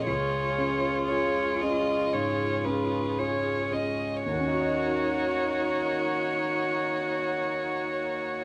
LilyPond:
<<
  \new Staff \with { instrumentName = "Violin" } { \time 4/4 \key ees \minor \tempo 4 = 57 des''4 des''8 ees''8 des''8 ces''8 des''8 ees''8 | des''1 | }
  \new Staff \with { instrumentName = "Viola" } { \time 4/4 \key ees \minor aes'1 | ges'1 | }
  \new Staff \with { instrumentName = "Harmonium" } { \time 4/4 \key ees \minor <aes f' des''>1 | <bes ges' des''>1 | }
  \new Staff \with { instrumentName = "Cello" } { \time 4/4 \key ees \minor f'2.~ f'8 r8 | ees'1 | }
  \new Staff \with { instrumentName = "Grand piano" } { \time 4/4 \key ees \minor des,8 <des' aes'>8 <f' aes'>8 <des' aes'>8 aes,8 <des' aes'>8 <f' aes'>8 <des' aes'>8 | <ees, ees des' ees' ges' ees''>1 | }
>>